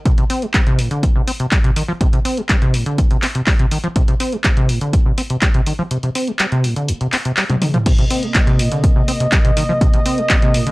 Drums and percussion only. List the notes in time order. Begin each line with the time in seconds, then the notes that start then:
0.06 kick, closed hi-hat
0.18 closed hi-hat
0.30 open hi-hat
0.42 closed hi-hat
0.54 kick, clap, closed hi-hat
0.67 closed hi-hat
0.79 open hi-hat
0.91 closed hi-hat
1.03 kick, closed hi-hat
1.28 open hi-hat
1.40 closed hi-hat
1.51 kick, clap, closed hi-hat
1.64 closed hi-hat
1.76 open hi-hat
2.01 kick, closed hi-hat
2.13 closed hi-hat
2.25 open hi-hat
2.37 closed hi-hat
2.49 kick, clap, closed hi-hat
2.62 closed hi-hat
2.74 open hi-hat
2.86 closed hi-hat
2.98 kick, closed hi-hat
3.10 closed hi-hat
3.22 clap, open hi-hat
3.35 closed hi-hat
3.46 kick, clap, open hi-hat
3.59 closed hi-hat
3.71 open hi-hat
3.84 closed hi-hat
3.96 kick, closed hi-hat
4.08 closed hi-hat
4.20 open hi-hat
4.32 closed hi-hat
4.44 kick, clap, closed hi-hat
4.57 closed hi-hat
4.69 open hi-hat
4.81 closed hi-hat
4.93 kick, closed hi-hat
5.18 open hi-hat
5.30 closed hi-hat
5.42 kick, clap, closed hi-hat
5.54 closed hi-hat
5.66 open hi-hat
5.91 closed hi-hat
6.03 closed hi-hat
6.15 open hi-hat
6.27 closed hi-hat
6.39 clap, closed hi-hat
6.52 closed hi-hat
6.64 open hi-hat
6.76 closed hi-hat
6.88 closed hi-hat
7.01 closed hi-hat
7.12 clap, open hi-hat
7.25 closed hi-hat
7.37 clap, open hi-hat
7.50 closed hi-hat, high tom
7.62 open hi-hat, mid tom
7.74 closed hi-hat, mid tom
7.86 kick, closed hi-hat, crash
7.98 closed hi-hat
8.10 open hi-hat
8.23 closed hi-hat
8.34 kick, clap, closed hi-hat
8.47 closed hi-hat
8.59 open hi-hat
8.72 closed hi-hat
8.84 kick, closed hi-hat
9.08 open hi-hat
9.20 closed hi-hat
9.32 kick, clap, closed hi-hat
9.45 closed hi-hat
9.57 open hi-hat
9.81 kick, closed hi-hat
9.94 closed hi-hat
10.06 open hi-hat
10.18 closed hi-hat
10.30 kick, clap, closed hi-hat
10.42 closed hi-hat
10.54 open hi-hat
10.67 closed hi-hat